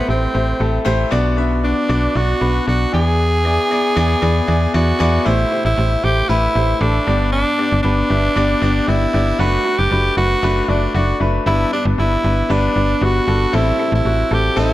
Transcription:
Already playing: A2 A3 E4 G4 C5
0.07 A1 A3 C4 E4 G4 C5
0.33 A1 A3 E4 G4 C5
0.59 A1 A3 E4 G4 A4
0.85 A1 A3 E4 G4 C5
1.10 B1 B2 B3 D4 F#4 D5
1.37 B3 D4 F#4 E5
1.63 B3 D4 F#4 D5
1.89 B1 B3 D4 F#4 D5
2.15 B1 B3 D4 F#4 D5
2.40 B1 B3 D4 F#4 B4
2.66 B1 B3 D4 F#4 D5
2.92 E2 E3 B3 E4 G#4 D5
3.44 B3 E4 G#4 D5
3.70 B3 E4 G#4 D5
3.95 E2 B3 E4 G#4 D5
4.21 E2 B3 E4 G#4 D5
4.47 E2 B3 E4 G#4 D5
4.73 E2 B3 E4 F#4 G#4 D5
4.99 E2 B3 E4 G#4 D5
5.24 A1 A2 A3 E4 G4 C5
5.51 A3 E4 G4 C5
5.65 A1 E4
5.76 A1 A3 E4 G4 C5
6.02 A1 A3 E4 G4 C5
6.29 A1 A3 E4 G4 B4
6.55 A1 A3 E4 G4 C5
6.80 A1 A3 D4 E4 G4 A4
7.06 G1 G2 B3 D4 G4 D5
7.32 D4
7.58 B3 D4 G4 D5
7.72 G1
7.83 G1 B3 D4 G4 B4
8.09 G1 B3 D4 G4 E5
8.36 G1 B3 D4 G4 D5
8.61 G1 B3 D4 G4 D5
8.87 G1 B3 D4 E4 G4 D5
9.13 G1 B3 D4 G4 D5
9.39 F#1 A3 D4 F#4 B4
9.64 A3 D4 F#4 B4
9.78 F#1 G4
9.90 F#1 A3 D4 F#4 B4
10.16 F#1 A3 D4 F#4 B4
10.43 F#1 A3 D4 F#4 B4
10.68 F#1 A3 D4 F#4 D5
10.94 F#1 A3 D4 F#4 D5
11.20 F#1 A3 D4 F#4 B4
11.46 G1 G2 G3 B3 D4 E4 B4
11.72 G3 B3 D4 B4
11.85 G1
11.98 G1 G3 B3 D4 E4 B4
12.23 G1 G3 B3 D4 B4
12.49 G1 G3 B3 D4 B4
12.75 G1 G3 B3 D4 B4
13.01 G1 G3 B3 D4 F#4
13.27 G1 G3 B3 D4 A4
13.52 A1 A2 G3 C4 E4 A4
13.78 G3 C4 E4 A4
13.92 A1 E4
14.05 A1 G3 C4 E4 F#4
14.30 A1 G3 C4 E4 G4 A4
14.56 A1 G3 C4 E4 A4

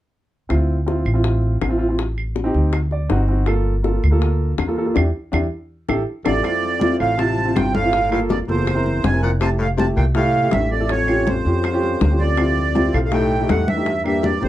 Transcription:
0.49 D2 C4 E4 F4, high bongo, claves
0.86 C4 E4 F4, high bongo
1.05 A1, claves
1.14 C4 E4 F4
1.24 high bongo
1.61 A1, high bongo, low bongo, claves
1.69 C4 E4 F4
1.78 C4 E4 F4
1.89 C4 E4 F4
1.99 high bongo
2.18 claves
2.36 high bongo
2.44 C4 D#4 G4
2.54 D2, high bongo
2.73 high bongo, claves
2.91 D5, high bongo
3.09 G1 C4 D#4 F#4 F#5, high bongo, low bongo
3.20 F#5
3.28 C4 D#4 F#4, high bongo
3.46 A#3 F4 A4, high bongo, claves
3.83 A#3 F4 A4, high bongo
4.03 D2, claves
4.11 A#3 F4 A4
4.22 high bongo
4.58 E2, high bongo, low bongo, claves
4.67 A#3 F4 A4
4.77 A#3 F4 A4
4.85 A#3 F4 A4
4.94 E2 D4 E4 G4, low bongo, claves
5.32 E2 D4 E4 G4, low bongo, claves
5.88 A1 E4 G4 A4, low bongo, claves
6.24 A1 F2 E4 G4 A4 D5, low bongo, claves
6.43 C4 E4 F4, high bongo, high conga, claves
6.63 high conga
6.80 C4 E4 F4, high bongo, high conga
6.99 A1 A2 F5, claves
7.17 C3 C4 E4 F4 A5, high bongo, high conga
7.38 high conga
7.45 C4 E4 F4
7.55 G1 C3 G5, high bongo, low bongo, high conga, claves
7.74 A2 F5, high conga
7.83 C4 E4 F4
7.93 high bongo, high conga
8.11 A2 A#3 F4 A4 F5, high conga, claves
8.30 F2 D5, high bongo, high conga
8.48 F#1 E2 A#3 F4 A4 C5, high bongo, high conga
8.67 high bongo, high conga, claves
8.75 C4 E4 A#4
8.86 high bongo, high conga
9.04 F1 C3 G#5, high bongo, low bongo, high conga
9.12 C4 E4 A#4
9.22 A#2 F#5, high bongo, high conga
9.40 C3 A3 E4 G4 A5, high bongo, high conga, claves
9.59 A2 F5, high conga
9.77 C3 A3 E4 G4 A5, high bongo, high conga
9.96 C2 A#2 G5, claves
10.14 A2 A3 E4 G4 F5, high bongo, high conga
10.34 high conga
10.43 A3 E4 G4
10.51 A1 G2 E5, high bongo, low bongo, high conga, claves
10.71 F2 D5
10.79 A3 E4 A4
10.89 F2 C#5, high bongo, high conga
11.07 C#4 F4 G4, high conga, claves
11.27 F2 C5, high bongo, high conga
11.45 F2 C#4 F4 G4, high bongo, high conga
11.64 high bongo, high conga, claves
11.72 C#4 F4 G4
11.82 high bongo, high conga
12.01 D2, high bongo, low bongo, high conga
12.10 C#4 F4 G4
12.20 F2 D5, high bongo, high conga
12.37 C4 E4 F4 G4, high bongo, high conga, claves
12.57 high conga
12.75 C4 E4 F4 G4, high bongo, high conga
12.93 B1 A2 F5, claves
13.04 A2 F5
13.12 A2 A3 D#4 G4 G5, high bongo, high conga
13.31 high conga
13.39 A3 D#4 G4
13.49 E2 A2 F#5, high bongo, low bongo, high conga, claves
13.68 G2 E5, high conga
13.76 A3 D#4 G4
13.86 high bongo, high conga
14.04 G2 A#3 D4 G4 E5, high conga, claves
14.23 G2 D5, high bongo, high conga
14.40 A1 F2 A#3 D4 G4 C5, high bongo, high conga

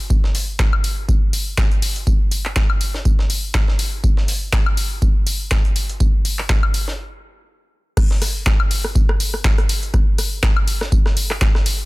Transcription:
0.10 kick, tambourine
0.24 snare
0.35 open hi-hat
0.59 kick, snare, clap, tambourine
0.73 high woodblock
0.84 open hi-hat, tambourine
1.09 kick, tambourine
1.33 open hi-hat, tambourine
1.58 kick, snare, clap, tambourine
1.71 closed hi-hat
1.82 open hi-hat, tambourine
1.96 closed hi-hat
2.07 kick, tambourine
2.31 open hi-hat, tambourine
2.45 clap
2.56 kick, snare, clap, tambourine
2.70 high woodblock
2.81 open hi-hat, tambourine
2.94 snare
3.05 kick, tambourine
3.19 snare
3.30 open hi-hat, tambourine
3.54 kick, snare, clap, tambourine
3.68 snare
3.79 open hi-hat, tambourine
4.04 kick, tambourine
4.17 snare
4.28 open hi-hat
4.53 kick, snare, clap, tambourine
4.66 high woodblock
4.77 open hi-hat, tambourine
5.02 kick, tambourine
5.27 open hi-hat, tambourine
5.51 kick, snare, clap, tambourine
5.65 closed hi-hat
5.76 open hi-hat, tambourine
5.89 closed hi-hat
6.00 kick, tambourine
6.25 open hi-hat, tambourine
6.39 clap
6.49 kick, snare, clap, tambourine
6.63 high woodblock
6.74 open hi-hat, tambourine
6.88 snare
7.97 kick, cross-stick, crash, tambourine
8.11 snare
8.22 cross-stick, open hi-hat
8.46 kick, cross-stick, snare, clap, tambourine
8.60 high woodblock
8.71 open hi-hat, tambourine
8.84 cross-stick
8.95 kick, tambourine
9.09 cross-stick
9.20 open hi-hat, tambourine
9.34 cross-stick
9.45 kick, snare, clap, tambourine
9.58 cross-stick, closed hi-hat
9.69 open hi-hat, tambourine
9.83 closed hi-hat
9.94 kick, cross-stick, tambourine
10.18 cross-stick, open hi-hat, tambourine
10.43 kick, cross-stick, snare, clap, tambourine
10.57 high woodblock
10.67 open hi-hat, tambourine
10.81 cross-stick, snare
10.92 kick, tambourine
11.06 cross-stick, snare
11.17 open hi-hat, tambourine
11.30 cross-stick, clap
11.41 kick, snare, clap, tambourine
11.55 cross-stick, snare
11.66 open hi-hat, tambourine

